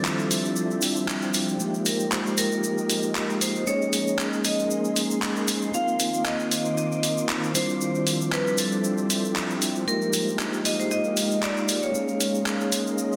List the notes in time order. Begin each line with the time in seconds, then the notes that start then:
Already playing: F3 G3 C4 D4 E4 F4 A4 C5 E5 D6
0.05 clap, cabasa
0.09 G5
0.19 cabasa
0.31 open hi-hat, cabasa
0.45 cabasa
0.56 cabasa
0.71 cabasa
0.81 open hi-hat, cabasa
0.96 cabasa
1.08 clap, cabasa
1.22 cabasa
1.34 open hi-hat, cabasa
1.49 cabasa
1.59 G#3 A#3 D#4 F4 G4 A#4 D#5, cabasa
1.73 G#3 A#4, cabasa
1.86 A#4, open hi-hat, cabasa
2.00 cabasa
2.12 C5, clap, cabasa
2.27 cabasa
2.37 A#4, open hi-hat, cabasa
2.52 D#5, cabasa
2.64 cabasa
2.78 cabasa
2.90 open hi-hat, cabasa
3.03 cabasa
3.15 clap, cabasa
3.30 cabasa
3.41 C5, open hi-hat, cabasa
3.55 cabasa
3.66 G#3 A#3 C#4 D#4 G#4 C#5 C6, cabasa
3.82 cabasa
3.93 open hi-hat, cabasa
4.07 cabasa
4.16 G#5, clap, cabasa
4.33 C5, cabasa
4.45 D#5, open hi-hat, cabasa
4.59 cabasa
4.71 cabasa
4.85 cabasa
4.96 open hi-hat, cabasa
5.10 cabasa
5.22 clap, cabasa
5.36 cabasa
5.48 open hi-hat, cabasa
5.62 cabasa
5.73 D#3 A#3 C4 D#4 F4 F5 D6, cabasa
5.88 cabasa
6.00 open hi-hat, cabasa
6.14 cabasa
6.25 D#5, clap, cabasa
6.40 cabasa
6.51 open hi-hat, cabasa
6.56 F5 D6
6.65 cabasa
6.77 D#5, cabasa
6.92 cabasa
7.03 open hi-hat, cabasa
7.17 cabasa
7.29 clap, cabasa
7.44 cabasa
7.54 F3 G3 C4 D4 E4 F4 C5 E5, open hi-hat, cabasa
7.69 cabasa
7.81 cabasa
7.85 F3
7.95 cabasa
8.07 open hi-hat, cabasa
8.21 G5, cabasa
8.32 B4, clap, cabasa
8.47 cabasa
8.58 A4 E5, open hi-hat, cabasa
8.72 cabasa
8.84 cabasa
8.98 cabasa
9.10 open hi-hat, cabasa
9.25 cabasa
9.36 clap, cabasa
9.50 cabasa
9.62 open hi-hat, cabasa
9.75 cabasa
9.87 G#3 A#3 D#4 F4 G4 A#4 F5, cabasa
10.02 cabasa
10.13 open hi-hat, cabasa
10.28 G#3, cabasa
10.37 A#4, clap, cabasa
10.53 cabasa
10.65 D#5, open hi-hat, cabasa
10.70 F5
10.80 C5, cabasa
10.91 D#5, cabasa
11.04 cabasa
11.17 open hi-hat, cabasa
11.31 cabasa
11.42 D5, clap, cabasa
11.57 cabasa
11.68 open hi-hat, cabasa
11.82 C#5, cabasa
11.94 G#3 A#3 C#4 D#4 G#4 D#5 C6, cabasa
12.08 cabasa
12.14 C6
12.21 open hi-hat, cabasa
12.35 cabasa
12.46 clap, cabasa
12.51 D#5
12.61 cabasa
12.72 open hi-hat, cabasa
12.81 G#5
12.87 cabasa
12.98 cabasa
13.13 cabasa